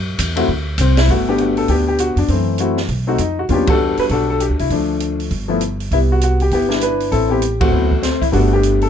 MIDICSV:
0, 0, Header, 1, 5, 480
1, 0, Start_track
1, 0, Key_signature, 1, "major"
1, 0, Tempo, 301659
1, 1730, Time_signature, 4, 2, 24, 8
1, 14152, End_track
2, 0, Start_track
2, 0, Title_t, "Grand piano"
2, 0, Program_c, 0, 0
2, 570, Note_on_c, 0, 57, 68
2, 586, Note_on_c, 0, 60, 65
2, 593, Note_on_c, 0, 64, 59
2, 596, Note_on_c, 0, 66, 71
2, 744, Note_off_c, 0, 57, 0
2, 752, Note_off_c, 0, 60, 0
2, 755, Note_off_c, 0, 64, 0
2, 757, Note_off_c, 0, 66, 0
2, 1287, Note_on_c, 0, 60, 80
2, 1546, Note_off_c, 0, 60, 0
2, 1562, Note_on_c, 0, 64, 88
2, 1742, Note_off_c, 0, 64, 0
2, 1759, Note_on_c, 0, 66, 79
2, 1761, Note_on_c, 0, 57, 58
2, 1761, Note_on_c, 0, 59, 53
2, 2034, Note_off_c, 0, 59, 0
2, 2048, Note_on_c, 0, 62, 58
2, 2050, Note_off_c, 0, 66, 0
2, 2051, Note_on_c, 0, 67, 83
2, 2058, Note_on_c, 0, 59, 61
2, 2187, Note_off_c, 0, 57, 0
2, 2194, Note_off_c, 0, 59, 0
2, 2203, Note_off_c, 0, 62, 0
2, 2211, Note_on_c, 0, 57, 50
2, 2218, Note_on_c, 0, 59, 47
2, 2227, Note_on_c, 0, 62, 46
2, 2239, Note_on_c, 0, 66, 54
2, 2508, Note_on_c, 0, 69, 82
2, 2532, Note_off_c, 0, 67, 0
2, 2695, Note_off_c, 0, 69, 0
2, 2697, Note_off_c, 0, 59, 0
2, 2699, Note_on_c, 0, 67, 86
2, 2709, Note_off_c, 0, 62, 0
2, 2721, Note_on_c, 0, 59, 61
2, 2732, Note_on_c, 0, 62, 55
2, 2927, Note_off_c, 0, 57, 0
2, 2941, Note_off_c, 0, 66, 0
2, 2971, Note_off_c, 0, 67, 0
2, 2995, Note_on_c, 0, 67, 79
2, 3160, Note_off_c, 0, 67, 0
2, 3180, Note_on_c, 0, 66, 82
2, 3451, Note_off_c, 0, 62, 0
2, 3451, Note_off_c, 0, 66, 0
2, 3475, Note_on_c, 0, 62, 72
2, 3600, Note_off_c, 0, 59, 0
2, 3640, Note_off_c, 0, 62, 0
2, 3652, Note_on_c, 0, 60, 61
2, 3696, Note_on_c, 0, 52, 43
2, 3696, Note_on_c, 0, 57, 46
2, 4108, Note_off_c, 0, 57, 0
2, 4113, Note_off_c, 0, 60, 0
2, 4132, Note_on_c, 0, 57, 57
2, 4137, Note_on_c, 0, 60, 51
2, 4138, Note_on_c, 0, 64, 56
2, 4146, Note_on_c, 0, 66, 68
2, 4397, Note_off_c, 0, 57, 0
2, 4400, Note_off_c, 0, 60, 0
2, 4401, Note_off_c, 0, 64, 0
2, 4405, Note_off_c, 0, 66, 0
2, 4568, Note_off_c, 0, 52, 0
2, 4888, Note_on_c, 0, 60, 59
2, 4893, Note_on_c, 0, 57, 57
2, 4903, Note_on_c, 0, 63, 57
2, 4910, Note_on_c, 0, 66, 71
2, 5060, Note_off_c, 0, 60, 0
2, 5063, Note_off_c, 0, 57, 0
2, 5068, Note_off_c, 0, 63, 0
2, 5071, Note_off_c, 0, 66, 0
2, 5102, Note_on_c, 0, 63, 69
2, 5372, Note_off_c, 0, 63, 0
2, 5396, Note_on_c, 0, 66, 75
2, 5476, Note_off_c, 0, 66, 0
2, 5553, Note_on_c, 0, 54, 58
2, 5565, Note_on_c, 0, 58, 53
2, 5575, Note_on_c, 0, 61, 52
2, 5577, Note_on_c, 0, 65, 64
2, 5606, Note_on_c, 0, 67, 79
2, 5631, Note_on_c, 0, 62, 59
2, 5636, Note_on_c, 0, 59, 56
2, 5827, Note_off_c, 0, 59, 0
2, 5828, Note_off_c, 0, 54, 0
2, 5831, Note_off_c, 0, 62, 0
2, 5834, Note_off_c, 0, 58, 0
2, 5838, Note_on_c, 0, 55, 55
2, 5839, Note_off_c, 0, 61, 0
2, 5840, Note_off_c, 0, 65, 0
2, 5851, Note_on_c, 0, 59, 51
2, 5855, Note_on_c, 0, 62, 53
2, 5857, Note_on_c, 0, 66, 61
2, 5884, Note_on_c, 0, 69, 95
2, 5891, Note_off_c, 0, 62, 0
2, 5893, Note_off_c, 0, 67, 0
2, 5894, Note_off_c, 0, 66, 0
2, 5915, Note_on_c, 0, 62, 57
2, 5918, Note_on_c, 0, 66, 63
2, 6358, Note_on_c, 0, 71, 89
2, 6369, Note_off_c, 0, 69, 0
2, 6437, Note_off_c, 0, 71, 0
2, 6537, Note_off_c, 0, 62, 0
2, 6543, Note_off_c, 0, 66, 0
2, 6543, Note_on_c, 0, 69, 83
2, 6561, Note_on_c, 0, 62, 62
2, 6567, Note_on_c, 0, 66, 62
2, 6813, Note_off_c, 0, 69, 0
2, 6846, Note_on_c, 0, 69, 77
2, 6885, Note_off_c, 0, 55, 0
2, 6892, Note_off_c, 0, 59, 0
2, 7006, Note_off_c, 0, 69, 0
2, 7014, Note_on_c, 0, 67, 72
2, 7094, Note_off_c, 0, 67, 0
2, 7318, Note_on_c, 0, 64, 69
2, 7442, Note_off_c, 0, 62, 0
2, 7445, Note_off_c, 0, 66, 0
2, 7500, Note_off_c, 0, 64, 0
2, 7506, Note_on_c, 0, 62, 62
2, 7511, Note_on_c, 0, 53, 46
2, 7511, Note_on_c, 0, 57, 46
2, 8222, Note_off_c, 0, 62, 0
2, 8397, Note_off_c, 0, 53, 0
2, 8398, Note_off_c, 0, 57, 0
2, 8723, Note_on_c, 0, 53, 55
2, 8731, Note_on_c, 0, 57, 54
2, 8742, Note_on_c, 0, 59, 55
2, 8750, Note_on_c, 0, 64, 64
2, 8900, Note_off_c, 0, 53, 0
2, 8904, Note_off_c, 0, 57, 0
2, 8909, Note_off_c, 0, 59, 0
2, 8913, Note_off_c, 0, 64, 0
2, 9432, Note_on_c, 0, 64, 80
2, 9442, Note_on_c, 0, 55, 55
2, 9448, Note_on_c, 0, 59, 55
2, 9511, Note_off_c, 0, 64, 0
2, 9741, Note_on_c, 0, 66, 73
2, 9901, Note_off_c, 0, 66, 0
2, 9925, Note_on_c, 0, 66, 74
2, 10187, Note_off_c, 0, 66, 0
2, 10215, Note_on_c, 0, 67, 76
2, 10324, Note_off_c, 0, 55, 0
2, 10327, Note_off_c, 0, 59, 0
2, 10364, Note_off_c, 0, 67, 0
2, 10388, Note_on_c, 0, 67, 84
2, 10413, Note_on_c, 0, 59, 64
2, 10419, Note_on_c, 0, 64, 58
2, 10618, Note_off_c, 0, 59, 0
2, 10640, Note_off_c, 0, 64, 0
2, 10641, Note_on_c, 0, 59, 53
2, 10646, Note_on_c, 0, 55, 57
2, 10656, Note_on_c, 0, 62, 55
2, 10664, Note_on_c, 0, 64, 65
2, 10820, Note_off_c, 0, 59, 0
2, 10822, Note_off_c, 0, 55, 0
2, 10827, Note_off_c, 0, 62, 0
2, 10827, Note_off_c, 0, 67, 0
2, 10831, Note_off_c, 0, 64, 0
2, 10860, Note_on_c, 0, 71, 79
2, 10882, Note_on_c, 0, 64, 57
2, 10886, Note_on_c, 0, 62, 58
2, 11304, Note_off_c, 0, 71, 0
2, 11315, Note_off_c, 0, 64, 0
2, 11317, Note_off_c, 0, 62, 0
2, 11325, Note_on_c, 0, 69, 86
2, 11347, Note_on_c, 0, 60, 60
2, 11353, Note_on_c, 0, 64, 59
2, 11596, Note_off_c, 0, 60, 0
2, 11596, Note_off_c, 0, 64, 0
2, 11597, Note_on_c, 0, 55, 57
2, 11605, Note_on_c, 0, 59, 53
2, 11619, Note_on_c, 0, 60, 50
2, 11620, Note_on_c, 0, 64, 60
2, 11635, Note_on_c, 0, 67, 78
2, 11636, Note_off_c, 0, 69, 0
2, 11778, Note_off_c, 0, 55, 0
2, 11782, Note_off_c, 0, 59, 0
2, 11790, Note_off_c, 0, 60, 0
2, 11790, Note_off_c, 0, 64, 0
2, 12104, Note_on_c, 0, 66, 90
2, 12124, Note_on_c, 0, 60, 61
2, 12127, Note_on_c, 0, 57, 61
2, 12128, Note_off_c, 0, 67, 0
2, 12259, Note_off_c, 0, 60, 0
2, 12278, Note_on_c, 0, 54, 46
2, 12282, Note_on_c, 0, 60, 45
2, 12284, Note_on_c, 0, 59, 42
2, 12287, Note_on_c, 0, 64, 54
2, 12554, Note_off_c, 0, 54, 0
2, 12556, Note_off_c, 0, 60, 0
2, 12557, Note_off_c, 0, 59, 0
2, 12559, Note_off_c, 0, 64, 0
2, 12772, Note_on_c, 0, 60, 76
2, 12791, Note_off_c, 0, 66, 0
2, 13016, Note_off_c, 0, 57, 0
2, 13050, Note_off_c, 0, 60, 0
2, 13069, Note_on_c, 0, 64, 76
2, 13149, Note_off_c, 0, 64, 0
2, 13237, Note_on_c, 0, 55, 61
2, 13246, Note_on_c, 0, 59, 55
2, 13252, Note_on_c, 0, 57, 56
2, 13253, Note_on_c, 0, 62, 69
2, 13263, Note_on_c, 0, 66, 77
2, 13282, Note_off_c, 0, 59, 0
2, 13306, Note_on_c, 0, 59, 61
2, 13536, Note_off_c, 0, 66, 0
2, 13568, Note_off_c, 0, 62, 0
2, 13575, Note_on_c, 0, 67, 83
2, 13586, Note_off_c, 0, 59, 0
2, 13592, Note_on_c, 0, 62, 63
2, 13610, Note_on_c, 0, 59, 59
2, 14012, Note_off_c, 0, 67, 0
2, 14043, Note_on_c, 0, 69, 85
2, 14152, Note_off_c, 0, 55, 0
2, 14152, Note_off_c, 0, 57, 0
2, 14152, Note_off_c, 0, 59, 0
2, 14152, Note_off_c, 0, 62, 0
2, 14152, Note_off_c, 0, 69, 0
2, 14152, End_track
3, 0, Start_track
3, 0, Title_t, "Upright bass"
3, 0, Program_c, 1, 32
3, 0, Note_on_c, 1, 42, 83
3, 280, Note_off_c, 1, 42, 0
3, 298, Note_on_c, 1, 40, 90
3, 756, Note_off_c, 1, 40, 0
3, 765, Note_on_c, 1, 38, 91
3, 1233, Note_off_c, 1, 38, 0
3, 1240, Note_on_c, 1, 36, 93
3, 1710, Note_off_c, 1, 36, 0
3, 1726, Note_on_c, 1, 31, 73
3, 2638, Note_off_c, 1, 31, 0
3, 2676, Note_on_c, 1, 38, 75
3, 3404, Note_off_c, 1, 38, 0
3, 3437, Note_on_c, 1, 41, 64
3, 3620, Note_off_c, 1, 41, 0
3, 3636, Note_on_c, 1, 42, 70
3, 4553, Note_off_c, 1, 42, 0
3, 4596, Note_on_c, 1, 35, 76
3, 5048, Note_off_c, 1, 35, 0
3, 5070, Note_on_c, 1, 41, 65
3, 5524, Note_off_c, 1, 41, 0
3, 5557, Note_on_c, 1, 40, 80
3, 6286, Note_off_c, 1, 40, 0
3, 6514, Note_on_c, 1, 35, 73
3, 7116, Note_off_c, 1, 35, 0
3, 7152, Note_on_c, 1, 38, 55
3, 7309, Note_off_c, 1, 38, 0
3, 7317, Note_on_c, 1, 36, 65
3, 7471, Note_off_c, 1, 36, 0
3, 7479, Note_on_c, 1, 38, 74
3, 8397, Note_off_c, 1, 38, 0
3, 8446, Note_on_c, 1, 31, 74
3, 9361, Note_off_c, 1, 31, 0
3, 9408, Note_on_c, 1, 36, 73
3, 10322, Note_off_c, 1, 36, 0
3, 10370, Note_on_c, 1, 31, 76
3, 11284, Note_off_c, 1, 31, 0
3, 11325, Note_on_c, 1, 33, 75
3, 12242, Note_off_c, 1, 33, 0
3, 12280, Note_on_c, 1, 38, 76
3, 13199, Note_off_c, 1, 38, 0
3, 13255, Note_on_c, 1, 31, 82
3, 14152, Note_off_c, 1, 31, 0
3, 14152, End_track
4, 0, Start_track
4, 0, Title_t, "Muted upright bass strokes"
4, 6330, Note_on_c, 9, 29, 37
4, 6489, Note_off_c, 9, 29, 0
4, 14152, End_track
5, 0, Start_track
5, 0, Title_t, "Drums"
5, 294, Note_on_c, 9, 36, 19
5, 296, Note_on_c, 9, 44, 59
5, 296, Note_on_c, 9, 51, 74
5, 453, Note_off_c, 9, 36, 0
5, 456, Note_off_c, 9, 44, 0
5, 456, Note_off_c, 9, 51, 0
5, 582, Note_on_c, 9, 51, 61
5, 741, Note_off_c, 9, 51, 0
5, 768, Note_on_c, 9, 36, 24
5, 927, Note_off_c, 9, 36, 0
5, 1238, Note_on_c, 9, 44, 56
5, 1238, Note_on_c, 9, 51, 66
5, 1246, Note_on_c, 9, 36, 23
5, 1397, Note_off_c, 9, 44, 0
5, 1397, Note_off_c, 9, 51, 0
5, 1405, Note_off_c, 9, 36, 0
5, 1546, Note_on_c, 9, 51, 49
5, 1548, Note_on_c, 9, 38, 55
5, 1705, Note_off_c, 9, 51, 0
5, 1707, Note_off_c, 9, 38, 0
5, 1726, Note_on_c, 9, 36, 26
5, 1729, Note_on_c, 9, 46, 36
5, 1885, Note_off_c, 9, 36, 0
5, 1888, Note_off_c, 9, 46, 0
5, 2200, Note_on_c, 9, 42, 45
5, 2360, Note_off_c, 9, 42, 0
5, 2496, Note_on_c, 9, 46, 29
5, 2655, Note_off_c, 9, 46, 0
5, 2675, Note_on_c, 9, 46, 38
5, 2681, Note_on_c, 9, 36, 29
5, 2834, Note_off_c, 9, 46, 0
5, 2840, Note_off_c, 9, 36, 0
5, 3159, Note_on_c, 9, 42, 44
5, 3318, Note_off_c, 9, 42, 0
5, 3451, Note_on_c, 9, 46, 34
5, 3610, Note_off_c, 9, 46, 0
5, 3634, Note_on_c, 9, 46, 35
5, 3637, Note_on_c, 9, 36, 25
5, 3793, Note_off_c, 9, 46, 0
5, 3797, Note_off_c, 9, 36, 0
5, 4104, Note_on_c, 9, 42, 49
5, 4263, Note_off_c, 9, 42, 0
5, 4410, Note_on_c, 9, 38, 32
5, 4569, Note_off_c, 9, 38, 0
5, 4591, Note_on_c, 9, 46, 38
5, 4596, Note_on_c, 9, 36, 29
5, 4750, Note_off_c, 9, 46, 0
5, 4755, Note_off_c, 9, 36, 0
5, 5064, Note_on_c, 9, 42, 45
5, 5223, Note_off_c, 9, 42, 0
5, 5549, Note_on_c, 9, 46, 35
5, 5557, Note_on_c, 9, 36, 26
5, 5708, Note_off_c, 9, 46, 0
5, 5716, Note_off_c, 9, 36, 0
5, 5845, Note_on_c, 9, 51, 64
5, 5854, Note_on_c, 9, 36, 68
5, 6004, Note_off_c, 9, 51, 0
5, 6013, Note_off_c, 9, 36, 0
5, 6324, Note_on_c, 9, 46, 31
5, 6483, Note_off_c, 9, 46, 0
5, 6514, Note_on_c, 9, 46, 41
5, 6520, Note_on_c, 9, 36, 30
5, 6673, Note_off_c, 9, 46, 0
5, 6679, Note_off_c, 9, 36, 0
5, 7004, Note_on_c, 9, 42, 44
5, 7163, Note_off_c, 9, 42, 0
5, 7309, Note_on_c, 9, 46, 33
5, 7468, Note_off_c, 9, 46, 0
5, 7483, Note_on_c, 9, 46, 36
5, 7484, Note_on_c, 9, 36, 25
5, 7642, Note_off_c, 9, 46, 0
5, 7643, Note_off_c, 9, 36, 0
5, 7960, Note_on_c, 9, 42, 50
5, 8119, Note_off_c, 9, 42, 0
5, 8269, Note_on_c, 9, 46, 30
5, 8428, Note_off_c, 9, 46, 0
5, 8445, Note_on_c, 9, 46, 37
5, 8447, Note_on_c, 9, 36, 29
5, 8604, Note_off_c, 9, 46, 0
5, 8606, Note_off_c, 9, 36, 0
5, 8922, Note_on_c, 9, 42, 45
5, 9081, Note_off_c, 9, 42, 0
5, 9232, Note_on_c, 9, 46, 34
5, 9391, Note_off_c, 9, 46, 0
5, 9410, Note_on_c, 9, 36, 29
5, 9411, Note_on_c, 9, 46, 34
5, 9569, Note_off_c, 9, 36, 0
5, 9570, Note_off_c, 9, 46, 0
5, 9887, Note_on_c, 9, 42, 46
5, 10046, Note_off_c, 9, 42, 0
5, 10182, Note_on_c, 9, 46, 28
5, 10341, Note_off_c, 9, 46, 0
5, 10364, Note_on_c, 9, 46, 40
5, 10367, Note_on_c, 9, 36, 29
5, 10524, Note_off_c, 9, 46, 0
5, 10526, Note_off_c, 9, 36, 0
5, 10668, Note_on_c, 9, 38, 41
5, 10827, Note_off_c, 9, 38, 0
5, 10840, Note_on_c, 9, 42, 46
5, 10999, Note_off_c, 9, 42, 0
5, 11144, Note_on_c, 9, 46, 33
5, 11303, Note_off_c, 9, 46, 0
5, 11330, Note_on_c, 9, 36, 28
5, 11330, Note_on_c, 9, 46, 36
5, 11489, Note_off_c, 9, 46, 0
5, 11490, Note_off_c, 9, 36, 0
5, 11804, Note_on_c, 9, 42, 49
5, 11963, Note_off_c, 9, 42, 0
5, 12105, Note_on_c, 9, 51, 58
5, 12108, Note_on_c, 9, 36, 61
5, 12264, Note_off_c, 9, 51, 0
5, 12267, Note_off_c, 9, 36, 0
5, 12592, Note_on_c, 9, 36, 40
5, 12751, Note_off_c, 9, 36, 0
5, 12780, Note_on_c, 9, 42, 44
5, 12781, Note_on_c, 9, 38, 36
5, 12939, Note_off_c, 9, 42, 0
5, 12941, Note_off_c, 9, 38, 0
5, 13076, Note_on_c, 9, 36, 46
5, 13083, Note_on_c, 9, 46, 35
5, 13235, Note_off_c, 9, 36, 0
5, 13242, Note_off_c, 9, 46, 0
5, 13257, Note_on_c, 9, 36, 27
5, 13260, Note_on_c, 9, 46, 36
5, 13416, Note_off_c, 9, 36, 0
5, 13419, Note_off_c, 9, 46, 0
5, 13736, Note_on_c, 9, 42, 47
5, 13895, Note_off_c, 9, 42, 0
5, 14026, Note_on_c, 9, 46, 31
5, 14152, Note_off_c, 9, 46, 0
5, 14152, End_track
0, 0, End_of_file